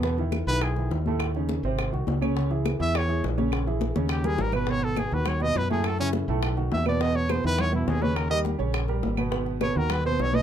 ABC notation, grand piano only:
X:1
M:4/4
L:1/8
Q:1/4=207
K:G#phr
V:1 name="Grand piano"
[B,,B,B] [D,DE]2 [D,DE]2 [D,DE]2 [A,,A,A]- | [A,,A,A] [C,CD]2 [^B,,^B,^B]2 [D,DF]2 [C,Cc] | [C,Cc] [E,EG]2 [E,EG]2 [E,EG]2 [C,Cc]- | [C,Cc] [E,EG]2 [C,Cc]2 [=G,=G^A]2 [B,,B,B] |
[B,,B,B]2 [B,,B,B] [D,DF]2 [B,,B,B]2 [A,,A,A]- | [A,,A,A] [C,CE]2 [A,,A,A]2 [D,DF]2 [B,,B,B] | [B,,B,B]2 [B,,B,B] [D,DE]2 [B,,B,B]2 [C,Cc]- | [C,Cc] [=G,=G^A]2 [C,Cc]2 [G,GA]2 [B,,B,B] |
[B,,B,B]2 [B,,B,B] [D,DF]2 [B,,B,B]2 [B,,B,B] |]